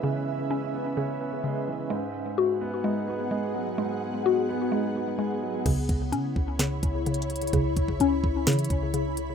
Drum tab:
CC |------------------------------------------------------------------------------------------------|------------------------------------------------------------------------------------------------|------------------------------------------------------------------------------------------------|x-----------------------------------------------------------------------------------------------|
HH |------------------------------------------------------------------------------------------------|------------------------------------------------------------------------------------------------|------------------------------------------------------------------------------------------------|x-----------x-----------x-----------------------x-----------x-----------x---x---x---x--x--x--x--|
SD |------------------------------------------------------------------------------------------------|------------------------------------------------------------------------------------------------|------------------------------------------------------------------------------------------------|------------------------------------------------o-----------------------------------------------|
BD |------------------------------------------------------------------------------------------------|------------------------------------------------------------------------------------------------|------------------------------------------------------------------------------------------------|o-----------o-----------------------o-----------------------o-----------------------------------|

CC |------------------------------------------------------------------------------------------------|
HH |x-----------x-----------x-----------------------x--x--x--x--x-----------x-----------x-----------|
SD |------------------------------------------------o-----------------------------------------------|
BD |o-----------o-----o-----------------o-----------------------o-----------------------------------|